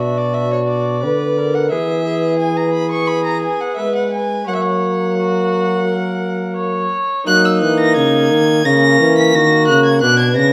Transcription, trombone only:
0.00 1.05 B2 medium
1.04 1.71 D3 medium
1.72 3.47 E3 medium
3.79 4.50 G#3 medium
4.48 6.95 F#3 medium
7.27 7.64 F#3 medium
7.62 7.98 E3 medium
7.96 8.33 C#3 medium
8.31 8.65 D#3 medium
8.65 8.99 C#3 medium
9.00 9.33 E3 medium
9.35 9.70 D#3 medium
9.69 10.02 C#3 medium
10.03 10.39 B2 medium
10.37 10.53 C#3 medium

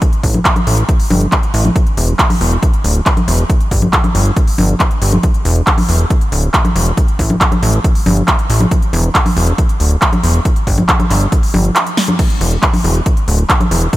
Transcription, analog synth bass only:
0.23 0.40 A1 loud
0.67 0.84 A1 medium
1.10 1.27 G1 loud
1.54 1.71 A1 loud
1.97 2.14 E1 loud
2.41 2.58 E1 medium
2.84 3.01 D1 medium
3.28 3.44 E1 loud
3.71 3.88 G1 loud
4.15 4.31 G1 loud
4.58 4.75 G1 loud
5.02 5.18 G1 medium
5.45 5.62 E1 loud
5.89 6.05 E1 medium
6.32 6.49 D1 loud
6.76 6.92 E1 loud
7.19 7.36 A1 loud
7.63 7.79 A1 medium
8.06 8.23 G1 loud
8.50 8.66 A1 loud
8.93 9.10 E1 loud
9.37 9.53 E1 medium
9.80 9.97 D1 medium
10.24 10.40 E1 loud
10.67 10.84 G1 loud
11.11 11.27 G1 medium
11.54 11.71 G1 loud
12.41 12.57 E1 loud
12.84 13.01 E1 loud
13.28 13.44 D1 loud
13.71 13.88 E1 loud

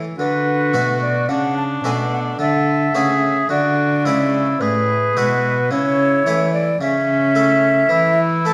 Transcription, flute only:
0.19 0.98 B4 medium
1.01 1.30 D5 medium
1.29 1.56 F#5 medium
1.57 1.63 A5 medium
1.85 1.91 G#5 medium
2.14 2.20 F#5 medium
2.41 3.49 E5 loud
3.50 4.61 D5 medium
4.60 5.72 B4 medium
5.71 6.53 C#5 loud
6.53 6.80 D5 loud
6.81 8.19 E5 loud
8.46 8.54 A5 loud

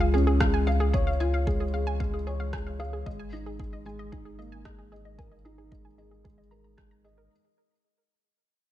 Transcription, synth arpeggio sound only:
0.00 0.06 F5 medium
0.14 0.22 G#4 medium
0.27 0.32 G#4 medium
0.40 0.46 F5 medium
0.54 0.62 G#5 medium
0.67 0.72 F5 medium
0.80 0.88 G#4 medium
0.93 0.99 G#4 medium
1.07 1.12 F5 medium
1.20 1.28 G#5 medium
1.34 1.39 F5 medium
1.47 1.55 G#4 medium
1.60 1.65 G#4 medium
1.74 1.79 F5 medium
1.87 1.95 G#5 medium
2.00 2.05 F5 medium
2.14 2.21 G#4 medium
2.27 2.32 G#4 medium
2.40 2.45 F5 medium
2.53 2.61 G#5 medium
2.67 2.72 F5 medium
2.80 2.87 G#4 medium
2.93 2.98 G#4 medium
3.06 3.11 D#5 medium
3.19 3.27 G#5 medium
3.33 3.38 D#5 medium
3.46 3.54 G#4 medium
3.60 3.65 G#4 medium
3.73 3.78 D#5 medium
3.86 3.94 G#5 medium
3.99 4.04 D#5 medium
4.12 4.20 G#4 medium
4.25 4.31 G#4 medium
4.39 4.44 D#5 medium
4.52 4.60 G#5 medium
4.65 4.71 D#5 medium
4.79 4.86 G#4 medium
4.92 4.97 G#4 medium
5.05 5.11 D#5 medium
5.19 5.26 G#5 medium
5.32 5.37 D#5 medium
5.45 5.53 G#4 medium
5.58 5.63 G#4 medium
5.72 5.77 D#5 medium
5.85 5.93 G#5 medium
5.98 6.03 D#5 medium
6.11 6.19 G#4 medium
6.25 6.30 G#4 medium
6.38 6.43 D#5 medium
6.51 6.56 A#5 medium
6.64 6.68 A#5 medium
6.78 6.83 G#5 medium
6.91 6.94 A#5 medium
7.04 7.10 G#4 medium
7.18 7.23 A#4 medium

